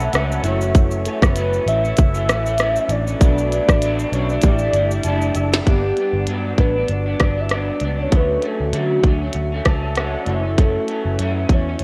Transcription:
Already playing: A3 C#4 D4 F#4 C#5 E5 F#5 A5 B5
0.00 F#3 A3, shaker
0.13 C#2 F#3 A3 C#4 F#5, cross-stick, closed hi-hat, shaker
0.32 shaker
0.42 F#1 F#2 E3 A3 C#4 E4 F#4 E5, closed hi-hat, shaker
0.47 C#5
0.61 shaker
0.75 kick, closed hi-hat, shaker
0.91 shaker
1.05 F#2 E3 A3 C#4 A4, closed hi-hat, shaker
1.22 F#1 A3 C#4, kick, cross-stick, shaker
1.26 B4
1.36 F#2 E3 A3 C#4, closed hi-hat, shaker
1.53 shaker
1.66 A1 F#2 E3 A3 C#4 E5, closed hi-hat, shaker
1.83 E3 A3 C#4, shaker
1.97 F#1, kick, closed hi-hat, shaker
2.14 E3 A3 C#4, shaker
2.28 A1 F#2 E3 A3 C#4, cross-stick, closed hi-hat, shaker
2.46 E3 A3 C#4, shaker
2.58 F#2 E3 A3 C#4, cross-stick, closed hi-hat, shaker
2.76 shaker
2.89 A1 D5, closed hi-hat, shaker
3.06 E3 A3 C#4, shaker
3.19 B1 B2 F#3 A3 D4 F#4, kick, closed hi-hat, shaker
3.24 D4 B4
3.38 shaker
3.52 B2 F#3 A3 D4 D5, closed hi-hat, shaker
3.68 A1 A3 D4, kick, cross-stick, shaker
3.73 F#3
3.82 B2 F#3 A3 D4, closed hi-hat, shaker
3.99 shaker
4.12 B1 B2 F#3 A3 C#5, closed hi-hat, shaker
4.17 D4
4.30 F#3 A3 D4 D5, shaker
4.41 A1 A2 A3 E4 G4, kick, closed hi-hat, shaker
4.46 G3 D4 E4 D5
4.59 E4, shaker
4.64 G3 D4
4.73 G1 A2 G3, closed hi-hat, shaker
4.77 D4 E4
4.91 G3 D4 E4, shaker
5.04 F#1 A2 G3 A5, closed hi-hat, shaker
5.08 D4 E4
5.21 shaker
5.35 F#1 E5, closed hi-hat, shaker
5.52 G3 D4 E4, snare, shaker
5.63 G1 G3 A#3 F#5, kick, closed hi-hat
5.67 G2 B3 D4 G4 D5
5.97 G2 B3, closed hi-hat
6.01 D4
6.13 G1
6.27 G2 F#3 B3 D4, closed hi-hat
6.58 A1 G2 F#3 B3 D4 B4, kick, closed hi-hat
6.76 F#3 B3 D4
6.88 G1 D5, closed hi-hat
7.06 F#3 B3 D4
7.20 G1 G2 F#3 B3 D4, kick, cross-stick, closed hi-hat
7.36 F#3 B3 D4
7.40 E5
7.49 G2 F#3 B3 D4, cross-stick, closed hi-hat
7.54 D5
7.80 C#2 G2 F#3 B3, closed hi-hat
7.85 D4
7.98 F#3 B3 D4 C#5
8.09 D2 D3 F#3 A3 D4 F#4, kick, closed hi-hat
8.14 C#4 B4 C5
8.20 C#5
8.42 D3 F#3 A3 C#4, closed hi-hat
8.47 A4
8.60 D2
8.73 D3 F#3 A3 C#4 F#4, closed hi-hat
9.03 D2 D3 F#3 A3, kick, closed hi-hat
9.08 C#4
9.21 F#3 A3 C#4
9.33 D2, closed hi-hat
9.52 F#3 A3 C#4
9.65 C#2 D3 F#3 A3 C#4 A5, kick, cross-stick, closed hi-hat
9.82 F#3 A3 C#4 E5 A5
9.96 F#3 A3 C#4 C#5 F#5, cross-stick, closed hi-hat
10.14 A4 D5
10.25 F#1 F#2 E3 A3 E4 F#4 E5, closed hi-hat
10.30 C#4 C#5
10.43 E3 A3 C#4
10.58 F#2 E3 A3 C#4 A4, kick, closed hi-hat
10.88 F#2 E3 A3 C#4, closed hi-hat
11.05 F#1
11.19 F#2 E3 A3 C#4, closed hi-hat
11.49 E2 F#2 E3 A3, kick, closed hi-hat
11.54 C#4 C#5
11.68 E3 A3 C#4
11.79 F#1, closed hi-hat

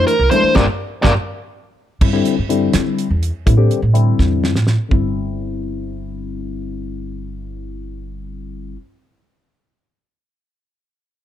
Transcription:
Already playing: E3 A3 D4 E4
0.07 A#4, closed hi-hat
0.19 C2
0.31 E3 A3 D4 E4 C5, closed hi-hat, high conga, low conga
0.43 muted upright bass stroke, low conga
0.55 G1 G3 A#3 D4 G4 A#4 D5, kick, snare, muted conga
1.02 G1 G3 A#3 D4 G4 A#4 D5, kick, snare, muted conga
2.01 G2 D3 G3 C4 E4, kick, crash
2.13 D3 G3 C4 E4
2.25 closed hi-hat
2.39 G2
2.49 D3 G3 C4 E4, closed hi-hat
2.73 G3, snare, closed hi-hat
2.98 closed hi-hat
3.10 E2
3.23 closed hi-hat
3.46 A2 D3 G3 C4 E4, kick, closed hi-hat
3.57 D3 G3 C4 G4
3.71 closed hi-hat
3.82 A2
3.94 D3 G3 C4 E4, closed hi-hat
4.19 E2, kick, snare
4.44 snare
4.55 A2, snare
4.67 snare
4.89 G1 D3 G3 C4, kick
4.93 E4

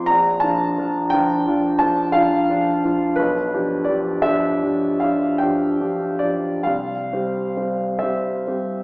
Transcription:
Already playing: F3 C4 F4 C6 D6
0.06 A#1 A#5
0.40 F3 D4 F4 A5
0.78 F3 D4 F4
1.10 F3 D4 F4 G5
1.47 F3 D4 F4
1.79 F3 D4 F4 A5
2.12 F3 D4 F4 F5
2.50 F3 D4 F4
2.84 F3 D4 F4
3.16 B1 B4
3.54 F3 D4 G4
3.84 F3 D4 G4 D5
4.22 F3 D4 G4 E5
4.63 F3 D4 G4
5.00 F3 D4 F5
5.04 G4
5.38 F3 D4 G5
5.43 G4
5.81 F3 D4 G4
6.19 F3 D4 G4 D5
6.63 C2 F5
7.13 G3 C4 G4
7.57 G3 C4 G4
7.99 G3 C4 G4 E5
8.47 G3 C4 G4

